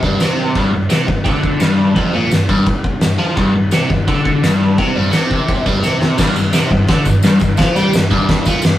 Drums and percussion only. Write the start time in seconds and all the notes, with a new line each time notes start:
0.03 kick
0.20 snare, tambourine, crash
0.55 kick, crash
0.90 snare, tambourine, crash
1.08 kick
1.26 kick, crash
1.43 kick
1.60 snare, tambourine, crash
1.96 kick, crash
2.31 snare, tambourine, crash
2.49 kick
2.67 kick, crash
2.84 kick
3.01 snare, tambourine, crash
3.37 kick, crash
3.71 snare, tambourine, crash
3.90 kick
4.08 kick, crash
4.25 kick
4.43 snare, tambourine, crash
4.78 kick, crash
5.13 snare, tambourine, crash
5.31 kick
5.49 kick, crash
5.66 kick
5.84 snare, tambourine
6.02 snare
6.18 kick, snare, crash, tambourine
6.36 tambourine
6.53 snare, tambourine, crash
6.71 kick
6.87 kick, snare, tambourine, crash
7.05 kick, tambourine
7.23 snare, tambourine, crash
7.39 kick, tambourine
7.57 kick, snare, tambourine, crash
7.76 tambourine
7.93 snare, tambourine, crash
8.11 kick
8.29 kick, snare, tambourine, crash
8.45 kick, tambourine
8.62 snare, tambourine, crash